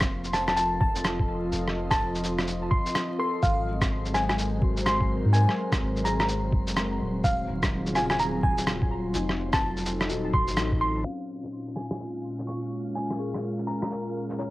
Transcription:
0.00 1.52 F1 medium
0.00 3.43 F3 medium
0.00 11.06 C4 medium
0.00 3.44 F4 medium
0.00 3.45 A#4 medium
0.00 1.28 C5 medium
0.00 0.54 C6 medium
0.00 11.07 C6 medium
0.00 kick loud
0.00 cross-stick loud
0.00 shaker medium
0.20 3.43 A4 medium
0.24 shaker soft
0.34 0.43 A5 medium
0.34 cross-stick soft
0.34 shaker medium
0.48 0.54 A5 medium
0.48 cross-stick medium
0.48 shaker soft
0.57 0.79 A5 medium
0.57 shaker medium
0.63 4.21 D#5 medium
0.81 1.06 A5 medium
0.81 kick loud
0.96 shaker medium
1.05 cross-stick loud
1.05 shaker medium
1.20 kick medium
1.52 1.99 F1 medium
1.52 shaker medium
1.68 cross-stick soft
1.91 2.16 A5 medium
1.91 kick loud
1.91 cross-stick loud
1.91 shaker medium
2.00 2.70 F1 medium
2.15 shaker soft
2.24 shaker medium
2.39 cross-stick medium
2.39 shaker soft
2.48 shaker medium
2.71 2.97 C6 medium
2.71 kick loud
2.86 shaker medium
2.95 cross-stick loud
2.95 shaker soft
3.19 3.63 A4 medium
3.19 3.49 C6 medium
3.43 5.23 G#1 medium
3.43 7.24 G#3 medium
3.43 3.68 F5 medium
3.43 kick loud
3.43 shaker medium
3.49 11.05 F#3 medium
3.59 8.01 C5 medium
3.81 kick loud
3.81 cross-stick loud
3.81 shaker medium
4.06 shaker soft
4.14 8.02 A#4 medium
4.14 5.80 C5 medium
4.14 4.24 G#5 medium
4.14 cross-stick soft
4.14 shaker soft
4.29 4.35 G#5 medium
4.29 cross-stick medium
4.29 shaker soft
4.38 shaker medium
4.62 6.28 F#4 medium
4.62 kick loud
4.77 shaker medium
4.86 5.11 C6 medium
4.86 cross-stick loud
4.86 shaker medium
5.00 kick medium
5.25 5.46 G#2 medium
5.33 7.00 A#4 medium
5.33 5.58 G#5 medium
5.33 shaker medium
5.49 cross-stick soft
5.72 kick loud
5.72 cross-stick loud
5.72 shaker medium
5.82 6.52 G#1 medium
5.96 shaker soft
6.05 7.44 G#4 medium
6.05 6.14 A#5 medium
6.05 shaker soft
6.20 6.26 A#5 medium
6.20 cross-stick medium
6.20 shaker soft
6.29 shaker medium
6.52 6.99 F#1 medium
6.52 kick loud
6.67 shaker medium
6.77 cross-stick loud
6.77 shaker soft
7.01 7.47 D#1 medium
7.24 9.15 D#3 medium
7.24 7.49 F5 medium
7.24 kick loud
7.24 shaker medium
7.43 9.14 C#3 medium
7.43 9.15 F4 medium
7.49 9.14 D#1 medium
7.62 9.15 G#4 medium
7.62 kick loud
7.62 cross-stick loud
7.62 shaker soft
7.87 shaker soft
7.95 9.34 F4 medium
7.95 8.05 G#5 medium
7.95 cross-stick soft
7.95 shaker medium
8.10 8.16 G#5 medium
8.10 cross-stick medium
8.10 shaker soft
8.19 8.41 A#5 medium
8.19 shaker medium
8.43 8.68 G#5 medium
8.43 kick medium
8.58 shaker medium
8.67 cross-stick loud
8.67 shaker medium
8.82 kick medium
9.14 9.61 F1 loud
9.14 10.55 D#4 medium
9.14 shaker medium
9.29 cross-stick soft
9.34 11.05 A4 medium
9.47 11.99 D#4 medium
9.53 9.78 A5 medium
9.53 kick loud
9.53 cross-stick loud
9.53 shaker medium
9.63 10.11 F1 medium
9.77 shaker soft
9.86 shaker medium
10.01 cross-stick medium
10.01 shaker soft
10.09 10.50 D#1 medium
10.09 11.25 F#4 medium
10.09 shaker medium
10.33 10.59 C6 medium
10.33 kick loud
10.48 11.04 A1 medium
10.48 shaker medium
10.57 11.25 D#4 medium
10.57 cross-stick loud
10.57 shaker medium
10.72 kick medium
10.81 11.05 C6 medium
11.04 14.50 A#2 medium
11.04 12.71 C#4 soft
11.04 14.50 F4 medium
11.04 11.30 F5 medium
11.04 14.50 F5 medium
11.04 shaker medium
11.17 14.50 C#4 medium
11.41 14.50 G#3 medium
11.41 shaker medium
11.67 shaker soft
11.76 11.86 G#5 medium
11.76 cross-stick soft
11.76 shaker soft
11.91 11.97 G#5 medium
11.91 cross-stick medium
12.00 shaker medium
12.37 14.50 A#4 medium
12.37 shaker soft
12.47 12.73 C#6 medium
12.47 shaker medium
12.95 13.21 G#5 medium
12.95 shaker medium
13.10 cross-stick soft
13.19 14.50 G#4 medium
13.34 cross-stick soft
13.34 shaker medium
13.58 shaker soft
13.67 13.76 A#5 medium
13.67 shaker soft
13.82 13.88 A#5 medium
13.82 cross-stick medium
13.91 shaker medium
14.30 shaker medium
14.38 14.50 C#5 medium
14.38 shaker soft

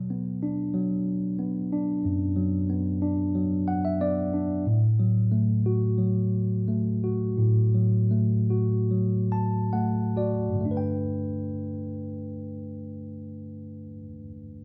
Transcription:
0.00 1.99 B2 soft
0.00 0.73 F#3 soft
0.10 1.35 B3 soft
0.43 1.68 D4 soft
0.74 2.00 F#3 soft
1.39 2.65 B3 soft
1.72 2.98 D4 soft
2.05 4.61 F#2 medium
2.36 3.34 F#3 soft
2.70 3.96 B3 soft
3.02 4.28 D4 soft
3.35 4.61 F#3 soft
3.68 3.82 F#5 soft
3.85 3.99 E5 soft
4.01 4.63 B3 soft
4.01 4.61 D5 medium
4.33 4.64 D4 soft
4.66 7.34 A2 soft
4.99 5.97 F#3 soft
5.31 6.62 A3 soft
5.66 6.98 F#4 soft
5.98 7.33 F#3 soft
6.68 8.08 A3 soft
7.04 8.48 F#4 soft
7.37 10.60 A2 soft
7.74 8.90 F#3 soft
8.11 9.70 A3 soft
8.50 10.14 F#4 soft
8.91 10.61 F#3 soft
9.32 9.71 A5 soft
9.73 10.59 A3 soft
9.73 10.14 F#5 soft
10.16 10.62 F#4 soft
10.16 10.60 D5 soft
10.49 13.85 G2 soft
10.55 13.90 D3 soft
10.60 13.96 A3 soft
10.65 14.01 D4 soft
10.71 14.07 B4 soft
10.77 14.13 G5 soft

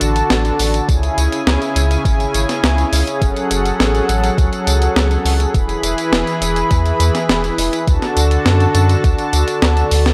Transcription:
0.00 0.22 A1 medium
0.00 0.86 D3 medium
0.00 0.86 D4 medium
0.00 0.86 F#4 medium
0.00 0.86 A4 medium
0.00 0.86 A5 medium
0.00 closed hi-hat medium
0.00 tambourine medium
0.16 closed hi-hat medium
0.16 tambourine soft
0.30 0.51 A1 loud
0.30 snare loud
0.30 closed hi-hat medium
0.30 tambourine soft
0.45 closed hi-hat soft
0.45 tambourine soft
0.59 0.80 A1 medium
0.59 open hi-hat medium
0.59 tambourine medium
0.74 closed hi-hat medium
0.74 tambourine soft
0.88 1.09 C#2 loud
0.88 3.19 C#3 medium
0.88 5.50 C#4 medium
0.88 3.19 E4 medium
0.88 5.50 G#4 medium
0.88 3.19 G#5 medium
0.88 kick loud
0.88 closed hi-hat medium
0.88 tambourine soft
1.03 closed hi-hat soft
1.03 tambourine soft
1.18 1.28 C#2 medium
1.18 closed hi-hat medium
1.18 tambourine medium
1.32 closed hi-hat soft
1.32 tambourine soft
1.47 1.57 C#2 medium
1.47 snare loud
1.47 closed hi-hat medium
1.47 tambourine soft
1.62 closed hi-hat soft
1.62 tambourine soft
1.76 1.97 C#2 loud
1.76 closed hi-hat medium
1.76 tambourine medium
1.91 closed hi-hat medium
1.91 tambourine soft
2.05 2.26 G#1 medium
2.05 kick loud
2.05 closed hi-hat soft
2.05 tambourine soft
2.20 closed hi-hat soft
2.20 tambourine soft
2.34 2.45 G#1 medium
2.34 closed hi-hat medium
2.34 tambourine medium
2.49 snare soft
2.49 closed hi-hat medium
2.49 tambourine soft
2.63 2.84 C#2 medium
2.63 snare loud
2.63 closed hi-hat medium
2.63 tambourine soft
2.78 closed hi-hat soft
2.78 tambourine soft
2.92 3.03 C#2 loud
2.92 open hi-hat medium
2.92 tambourine medium
3.07 closed hi-hat soft
3.07 tambourine soft
3.22 3.32 F#1 loud
3.22 5.52 F#3 medium
3.22 5.52 A4 medium
3.22 5.52 F#5 medium
3.22 kick loud
3.22 closed hi-hat medium
3.22 tambourine soft
3.36 closed hi-hat soft
3.36 tambourine soft
3.51 3.72 F#1 medium
3.51 closed hi-hat medium
3.51 tambourine medium
3.66 closed hi-hat soft
3.66 tambourine soft
3.80 4.01 A1 loud
3.80 snare loud
3.80 closed hi-hat soft
3.80 tambourine soft
3.95 closed hi-hat soft
3.95 tambourine soft
4.09 4.30 A1 loud
4.09 closed hi-hat medium
4.09 tambourine medium
4.24 closed hi-hat soft
4.24 tambourine soft
4.38 4.48 C#2 loud
4.38 kick loud
4.38 closed hi-hat soft
4.38 tambourine soft
4.53 closed hi-hat soft
4.53 tambourine soft
4.67 4.88 C#2 medium
4.67 closed hi-hat medium
4.67 tambourine medium
4.82 closed hi-hat medium
4.82 tambourine soft
4.96 5.17 C#2 loud
4.96 snare loud
4.96 closed hi-hat medium
4.96 tambourine soft
5.11 closed hi-hat soft
5.11 tambourine soft
5.25 5.46 C#2 medium
5.25 open hi-hat medium
5.25 tambourine medium
5.40 closed hi-hat soft
5.40 tambourine soft
5.54 5.75 E1 loud
5.54 7.85 E3 medium
5.54 7.85 E4 medium
5.54 7.85 G#4 medium
5.54 7.85 B4 medium
5.54 7.85 B5 loud
5.54 kick loud
5.54 closed hi-hat medium
5.54 tambourine soft
5.69 closed hi-hat soft
5.69 tambourine soft
5.83 5.94 E1 medium
5.83 closed hi-hat medium
5.83 tambourine medium
5.98 closed hi-hat medium
5.98 tambourine soft
6.12 6.23 E1 medium
6.12 snare loud
6.12 closed hi-hat soft
6.12 tambourine soft
6.27 closed hi-hat soft
6.27 tambourine soft
6.41 6.62 E1 loud
6.41 closed hi-hat medium
6.41 tambourine medium
6.56 closed hi-hat soft
6.56 tambourine soft
6.71 6.92 E2 medium
6.71 kick loud
6.71 closed hi-hat medium
6.71 tambourine soft
6.86 closed hi-hat soft
6.86 tambourine soft
7.00 7.10 E2 medium
7.00 closed hi-hat medium
7.00 tambourine medium
7.15 snare soft
7.15 closed hi-hat medium
7.15 tambourine soft
7.29 7.50 E1 medium
7.29 snare loud
7.29 closed hi-hat medium
7.29 tambourine soft
7.44 closed hi-hat soft
7.44 tambourine soft
7.58 7.69 E1 medium
7.58 open hi-hat medium
7.58 tambourine medium
7.73 closed hi-hat medium
7.73 tambourine soft
7.87 7.98 D2 loud
7.87 10.14 D3 medium
7.87 10.14 D4 medium
7.87 10.14 F#4 medium
7.87 10.14 A4 medium
7.87 10.14 A5 medium
7.87 kick loud
7.87 closed hi-hat medium
7.87 tambourine soft
8.02 snare soft
8.02 closed hi-hat soft
8.02 tambourine soft
8.16 8.37 D2 medium
8.16 closed hi-hat medium
8.16 tambourine medium
8.31 closed hi-hat medium
8.31 tambourine soft
8.45 8.67 F#2 loud
8.45 snare loud
8.45 closed hi-hat medium
8.45 tambourine soft
8.60 closed hi-hat soft
8.60 tambourine soft
8.75 8.96 F#2 loud
8.75 closed hi-hat medium
8.75 tambourine medium
8.89 closed hi-hat medium
8.89 tambourine soft
9.04 9.14 D2 medium
9.04 kick loud
9.04 closed hi-hat medium
9.04 tambourine soft
9.19 closed hi-hat soft
9.19 tambourine soft
9.33 9.43 D2 medium
9.33 closed hi-hat medium
9.33 tambourine medium
9.48 closed hi-hat medium
9.48 tambourine soft
9.62 9.83 D2 medium
9.62 snare loud
9.62 closed hi-hat medium
9.62 tambourine soft
9.77 closed hi-hat soft
9.77 tambourine soft
9.91 10.12 D2 loud
9.91 open hi-hat medium
9.91 tambourine medium
10.06 snare medium
10.06 closed hi-hat medium
10.06 tambourine soft

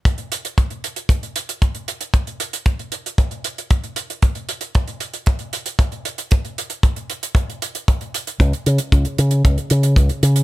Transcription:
0.05 kick loud
0.05 closed hi-hat medium
0.18 closed hi-hat soft
0.32 closed hi-hat medium
0.45 closed hi-hat medium
0.58 kick loud
0.58 closed hi-hat medium
0.70 closed hi-hat soft
0.84 closed hi-hat medium
0.96 closed hi-hat medium
1.09 kick loud
1.09 closed hi-hat medium
1.23 closed hi-hat soft
1.36 closed hi-hat loud
1.49 closed hi-hat medium
1.62 kick loud
1.62 closed hi-hat medium
1.75 closed hi-hat soft
1.88 closed hi-hat medium
2.01 closed hi-hat medium
2.14 kick loud
2.14 closed hi-hat medium
2.27 closed hi-hat soft
2.40 closed hi-hat medium
2.53 closed hi-hat medium
2.66 kick loud
2.66 closed hi-hat medium
2.79 closed hi-hat soft
2.92 closed hi-hat medium
3.06 closed hi-hat medium
3.18 kick loud
3.18 closed hi-hat medium
3.31 closed hi-hat soft
3.44 closed hi-hat loud
3.58 closed hi-hat medium
3.70 kick loud
3.70 closed hi-hat medium
3.84 closed hi-hat soft
3.96 closed hi-hat medium
4.10 closed hi-hat medium
4.22 kick loud
4.22 closed hi-hat medium
4.35 closed hi-hat soft
4.49 closed hi-hat medium
4.61 closed hi-hat medium
4.75 kick loud
4.75 closed hi-hat medium
4.88 closed hi-hat soft
5.00 closed hi-hat medium
5.14 closed hi-hat medium
5.26 kick loud
5.26 closed hi-hat medium
5.39 closed hi-hat soft
5.53 closed hi-hat medium
5.66 closed hi-hat medium
5.79 kick loud
5.79 closed hi-hat medium
5.92 closed hi-hat soft
6.05 closed hi-hat medium
6.18 closed hi-hat medium
6.31 kick loud
6.31 closed hi-hat medium
6.45 closed hi-hat soft
6.58 closed hi-hat medium
6.70 closed hi-hat medium
6.83 kick loud
6.83 closed hi-hat medium
6.96 closed hi-hat soft
7.10 closed hi-hat medium
7.23 closed hi-hat medium
7.35 kick loud
7.35 closed hi-hat medium
7.50 closed hi-hat soft
7.62 closed hi-hat medium
7.75 closed hi-hat medium
7.88 kick loud
7.88 closed hi-hat medium
8.01 closed hi-hat soft
8.14 closed hi-hat medium
8.27 closed hi-hat medium
8.40 8.52 C#2 medium
8.40 kick loud
8.40 closed hi-hat medium
8.53 closed hi-hat soft
8.66 8.78 C#3 medium
8.66 closed hi-hat medium
8.78 closed hi-hat medium
8.92 9.04 C#2 medium
8.92 kick loud
8.92 closed hi-hat medium
9.05 closed hi-hat soft
9.18 9.41 C#3 medium
9.18 closed hi-hat medium
9.31 closed hi-hat medium
9.45 9.56 C#2 medium
9.45 kick loud
9.45 closed hi-hat medium
9.58 closed hi-hat soft
9.70 9.94 C#3 medium
9.70 closed hi-hat medium
9.83 closed hi-hat medium
9.96 10.08 C#2 medium
9.96 kick loud
9.96 closed hi-hat medium
10.09 closed hi-hat soft
10.23 10.43 C#3 medium
10.23 closed hi-hat medium
10.36 closed hi-hat medium

